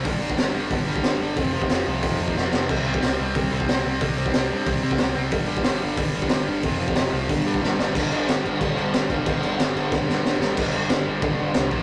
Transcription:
<<
  \new Staff \with { instrumentName = "Distorted electric guitar" } { \clef bass \time 4/4 \key g \mixolydian \tempo 4 = 182 <g, d g>8 <g, d g>8 <g, d g>8 <g, d g>8 <g, d g>8 <g, d g>8 <g, d g>8 <g, d g>8 | <f, c f>8 <f, c f>8 <f, c f>8 <f, c f>8 <f, c f>8 <f, c f>8 <f, c f>8 <f, c f>8 | <c g c'>8 <c g c'>8 <c g c'>8 <c g c'>8 <c g c'>8 <c g c'>8 <c g c'>8 <c g c'>8 | <c g c'>8 <c g c'>8 <c g c'>8 <c g c'>8 <c g c'>8 <c g c'>8 <c g c'>8 <c g c'>8 |
<g, d g>8 <g, d g>8 <g, d g>8 <g, d g>8 <g, d g>8 <g, d g>8 <g, d g>8 <g, d g>8 | <f, c f>8 <f, c f>8 <f, c f>8 <f, c f>8 <g, d g>8 <g, d g>8 <g, d g>8 <g, d g>8 | <g, d g>8 <g, d g>8 <g, d g>8 <g, d g>8 <g, d g>8 <g, d g>8 <g, d g>8 <g, d g>8 | <g, d g>8 <g, d g>8 <g, d g>8 <g, d g>8 <g, d g>8 <g, d g>8 <g, d g>8 <g, d g>8 |
<g, d g>2 <g, d g>4. <bes, f bes>8 | }
  \new Staff \with { instrumentName = "Picked electric bass" } { \clef bass \time 4/4 \key g \mixolydian g,,4 g,,8 g,,8 g,,8 g,,8 g,,8 g,,8 | f,,4 f,,8 c,8 f,,8 f,8 f,,8 f,,8 | c,4 c,8 c,8 c,8 c,8 c,8 c,8 | c,4 c,8 g,8 c,8 c8 c,8 c,8 |
g,,4 g,,8 g,,8 g,,8 g,,8 g,,8 g,,8 | f,,4 f,,8 c,8 g,,8 g,8 g,,8 g,,8 | g,,8 g,,8 g,,8 g,,8 g,,8 g,,8 g,,8 g,,8 | g,,8 g,,8 g,,8 g,,8 g,,8 g,,8 g,,8 g,,8 |
g,,8 g,,8 g,,8 g,,8 g,,8 g,,8 c,8 bes,,8 | }
  \new DrumStaff \with { instrumentName = "Drums" } \drummode { \time 4/4 <hho bd>8. bd16 <hho sn>4 <hho bd>8. bd16 <hho sn>4 | <hho bd>8. bd16 <hho sn>4 <hho bd>8. bd16 sn8 sn8 | <cymc bd>8. bd16 <hho sn>4 <hho bd>8. bd16 <hho sn>4 | <hho bd>8. bd16 <hho sn>4 <hho bd>8. bd16 <hho sn>4 |
<hho bd>8. bd16 <hho sn>4 <hho bd>8. bd16 <hho sn>4 | <hho bd>8. bd16 <hho sn>4 <hho bd>8. bd16 sn8 sn8 | <cymc bd>8 cymc8 <cymc sn>8 cymc8 <cymc bd>8 cymc8 <cymc sn>8 <cymc bd>8 | <cymc bd>8 cymc8 <cymc sn>8 cymc8 <bd sn>8 sn8 sn8 sn8 |
<cymc bd>4 <cymc sn>4 <cymc bd>4 <cymc sn>8 bd8 | }
>>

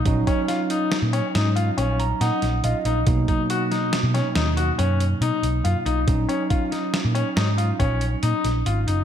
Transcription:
<<
  \new Staff \with { instrumentName = "Grand piano" } { \time 7/4 \key dis \minor \tempo 4 = 140 r8 cis'8 eis'8 dis'4 cis'8 dis'8 eis'8 cis'4 dis'4 eis'8 dis'8 | r8 dis'8 fis'8 dis'4 cis'8 dis'8 fis'8 cis'4 dis'4 eis'8 dis'8 | r8 cis'8 eis'8 dis'4 cis'8 dis'8 eis'8 cis'4 dis'4 eis'8 dis'8 | }
  \new Staff \with { instrumentName = "Tine electric piano" } { \time 7/4 \key dis \minor r1 r8 ais''8 fis''4 dis''4 | r1. r4 | r1. r4 | }
  \new Staff \with { instrumentName = "Tine electric piano" } { \time 7/4 \key dis \minor <fis cis' dis'>1.~ <fis cis' dis'>4 | <b, fis ais dis'>1.~ <b, fis ais dis'>4 | <fis cis' dis'>1.~ <fis cis' dis'>4 | }
  \new Staff \with { instrumentName = "Picked electric bass" } { \clef bass \time 7/4 \key dis \minor ais,,8 r4. r16 ais,8 r16 gis,4 ais,,4 ais,16 r16 ais,,8 ais,,16 r16 ais,,8 | b,,8 r4. r16 b,8 r16 dis,4 fis,4 b,16 r16 b,,8 fis,16 r16 b,,8 | ais,,8 r4. r16 ais,8 r16 gis,4 ais,,4 ais,16 r16 ais,,8 gis,,8 fis,,8 | }
  \new DrumStaff \with { instrumentName = "Drums" } \drummode { \time 7/4 <hh bd>8 <hh bd>8 <hh sn>8 hh8 <hh sn>8 hh8 <hh sn>8 hh8 hh8 hh8 <hh sn>8 <hh sn>8 hh8 hh8 | <hh bd>8 <hh bd>8 hh8 <hh sn>8 <hh sn>8 <hh sn>8 <hh sn>8 hh8 hh8 hh8 hh8 hh8 hh8 hh8 | <hh bd>8 hh8 <hh bd>8 <hh sn>8 <hh sn>8 hh8 <hh sn>8 hh8 <hh bd>8 hh8 hh8 <hh sn>8 hh8 hh8 | }
>>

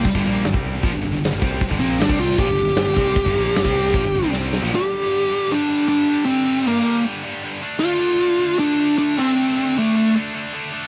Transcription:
<<
  \new Staff \with { instrumentName = "Lead electric guitar" } { \time 4/4 \key g \minor \tempo 4 = 155 g4 r2. | r8 c'8 d'8 f'8 g'2~ | g'2. r4 | g'2 d'4 d'4 |
c'4 bes4 r2 | f'2 d'4 d'8 c'8~ | c'4 a4 r2 | }
  \new Staff \with { instrumentName = "Distorted electric guitar" } { \clef bass \time 4/4 \key g \minor r16 <g, d>16 <bes, f bes>8 <g, d>16 <c g c'>8. <bes, f>16 <g, d>16 <g, d>16 <g, d>8 <g, d>16 <c g c'>8 | r16 <g, d>16 <bes, f bes>8 <g, d>16 <c g c'>8. <bes, f>16 <g, d>16 <g, d>16 <g, d>8 <g, d>16 <c g c'>8 | r16 <g, d>16 <bes, f bes>8 <g, d>16 <c g c'>8. <bes, f>16 <g, d>16 <g, d>16 <c g c'>4 <bes, f>16 | <g, d g>8 <g, d g>8 <g, d g>8 <g, d g>8 <g, d g>8 <g, d g>8 <g, d g>8 <g, d g>8 |
<g, d g>8 <g, d g>8 <g, d g>8 <g, d g>8 <g, d g>8 <g, d g>8 <g, d g>8 <d a d'>8 | <d a d'>8 <d a d'>8 <d a d'>8 <d a d'>8 <d a d'>8 <d a d'>8 <d a d'>8 <d a d'>8 | <d a d'>8 <d a d'>8 <d a d'>8 <d a d'>8 <d a d'>8 <d a d'>8 <d a d'>8 <d a d'>8 | }
  \new Staff \with { instrumentName = "Distorted electric guitar" } { \clef bass \time 4/4 \key g \minor r16 <g, d>16 <bes, f bes>8 <g, d>16 <c g c'>8. <bes, f>16 <g, d>16 <g, d>16 <g, d>8 <g, d>16 <c g c'>8 | r16 <g, d>16 <bes, f bes>8 <g, d>16 <c g c'>8. <bes, f>16 <g, d>16 <g, d>16 <g, d>8 <g, d>16 <c g c'>8 | r16 <g, d>16 <bes, f bes>8 <g, d>16 <c g c'>8. <bes, f>16 <g, d>16 <g, d>16 <c g c'>4 <bes, f>16 | r1 |
r1 | r1 | r1 | }
  \new Staff \with { instrumentName = "Distorted electric guitar" } { \clef bass \time 4/4 \key g \minor r16 <g, d>16 <bes, f bes>8 <g, d>16 <c g c'>8. <bes, f>16 <g, d>16 <g, d>16 <g, d>8 <g, d>16 <c g c'>8 | r16 <g, d>16 <bes, f bes>8 <g, d>16 <c g c'>8. <bes, f>16 <g, d>16 <g, d>16 <g, d>8 <g, d>16 <c g c'>8 | r16 <g, d>16 <bes, f bes>8 <g, d>16 <c g c'>8. <bes, f>16 <g, d>16 <g, d>16 <c g c'>4 <bes, f>16 | r1 |
r1 | r1 | r1 | }
  \new Staff \with { instrumentName = "Picked electric bass" } { \clef bass \time 4/4 \key g \minor r16 g,,16 bes,,8 g,,16 c,8. bes,,16 g,,16 g,,16 g,,8 g,,16 c,8 | r16 g,,16 bes,,8 g,,16 c,8. bes,,16 g,,16 g,,16 g,,8 g,,16 c,8 | r16 g,,16 bes,,8 g,,16 c,8. bes,,16 g,,16 g,,16 c,4 bes,,16 | r1 |
r1 | r1 | r1 | }
  \new DrumStaff \with { instrumentName = "Drums" } \drummode { \time 4/4 <hho bd>16 bd16 hho8 <hho sn>16 bd16 hho16 sn16 <hho bd>8 hho16 sn16 <hho sn>8 <hho bd>8 | <hho bd>16 bd16 hho8 <hho sn>16 bd16 hho8 <hho bd>8 hho16 sn16 <hho sn>8 <hho bd>8 | <hho bd>16 bd16 hho8 <hho sn>16 bd16 hho8 <hho bd>8 hho16 sn16 sn8 sn8 | r4 r4 r4 r4 |
r4 r4 r4 r4 | r4 r4 r4 r4 | r4 r4 r4 r4 | }
>>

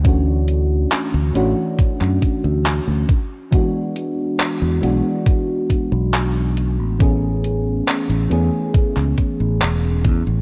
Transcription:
<<
  \new Staff \with { instrumentName = "FM electric piano" } { \time 4/4 \key a \major \tempo 4 = 69 <e a cis' d' fis'>4. <e a cis' d' fis'>2 r8 | <e gis b d' fis'>4. <e gis b d' fis'>2~ <e gis b d' fis'>8 | <e a b cis' gis'>4. <e a b cis' gis'>2~ <e a b cis' gis'>8 | }
  \new Staff \with { instrumentName = "Fingered electric bass" } { \clef bass \time 4/4 \key a \major d,4 r16 d,16 a,,16 r8 fis,16 r16 d,8 d,16 r8 | r4 r16 e,16 b,,16 r4 b,,4 a,,16~ | a,,4 r16 a,,16 e,16 r8 cis,16 r16 a,,16 e,,8 e,16 a,,16 | }
  \new DrumStaff \with { instrumentName = "Drums" } \drummode { \time 4/4 <hh bd>8 hh8 <hc hh>8 hh8 <hh bd>16 hc16 <hh bd>8 <hc hh>8 <hh bd>8 | <hh bd>8 hh8 <hc hh>8 hh8 <hh bd>8 <hh bd>8 <hc hh>8 hh8 | <hh bd>8 hh8 <hc hh>16 hh16 hh8 <hh bd>16 hc16 <hh bd>8 <hc hh>8 <hh bd>8 | }
>>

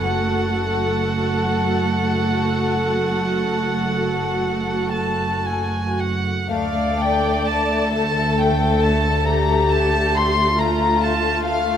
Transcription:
<<
  \new Staff \with { instrumentName = "Violin section" } { \time 12/8 \key fis \minor \tempo 4. = 41 fis''1~ fis''8 a''8 gis''8 fis''8 | \key d \minor f''8 g''8 a''8 a''8 g''8 a''8 bes''8 a''8 c'''8 bes''8 a''8 f''8 | }
  \new Staff \with { instrumentName = "Viola section" } { \time 12/8 \key fis \minor <a fis'>1. | \key d \minor d''4. a'4. g'4. f'4. | }
  \new Staff \with { instrumentName = "Violin section" } { \time 12/8 \key fis \minor << { a'1~ a'4~ a'16 r8. | \key d \minor a'1. | } \\ { r1. | a16 a16 a16 a16 a16 a16 a16 a16 a16 a16 a16 a16 a16 a16 a16 a16 a16 a16 a16 a16 a16 a16 a16 a16 | } >> }
  \new Staff \with { instrumentName = "Cello section" } { \clef bass \time 12/8 \key fis \minor fis,1. | \key d \minor d,1. | }
  \new Staff \with { instrumentName = "Double bass section" } { \clef bass \time 12/8 \key fis \minor fis,,1. | \key d \minor d,1. | }
>>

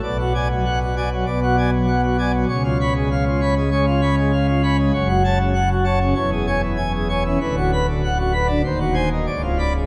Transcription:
<<
  \new Staff \with { instrumentName = "Pipe organ" } { \time 4/4 \key cis \phrygian \tempo 4 = 97 d''16 fis'16 <d'' gis''>16 fis16 fis''16 fis'16 <d'' gis''>16 fis16 d''16 fis'16 <d'' gis''>16 fis16 fis''16 fis'16 <d'' gis''>16 fis16 | cis''16 eis'16 <cis'' b''>16 gis16 eis''16 eis'16 <cis'' b''>16 gis16 cis''16 eis'16 <cis'' b''>16 gis16 eis''16 eis'16 <cis'' b''>16 gis16 | cis''16 fis'16 <cis'' a''>16 cis16 fis''16 fis'16 <cis'' a''>16 cis16 cis''16 gis'16 <cis'' gis''>16 e16 gis''16 gis'16 <cis'' gis''>16 e16 | b'16 fis'16 <b' b''>16 d16 fis''16 fis'16 <b' b''>16 d16 bis'16 fis'16 <bis' gis''>16 dis16 d''16 eis'16 <d'' b''>16 gis,16 | }
  \new Staff \with { instrumentName = "Pipe organ" } { \clef bass \time 4/4 \key cis \phrygian << { b,2 b,2 | cis2 gis16 r4. r16 | fis,4.~ fis,16 cis'16 e,4.~ e,16 cis'16 | d,4.~ d,16 d'16 dis,4 cis,4 | } \\ { b,,2 b,,2 | cis,1 | fis,,2 e,,2 | d,,2 dis,,4 cis,,4 | } >> }
>>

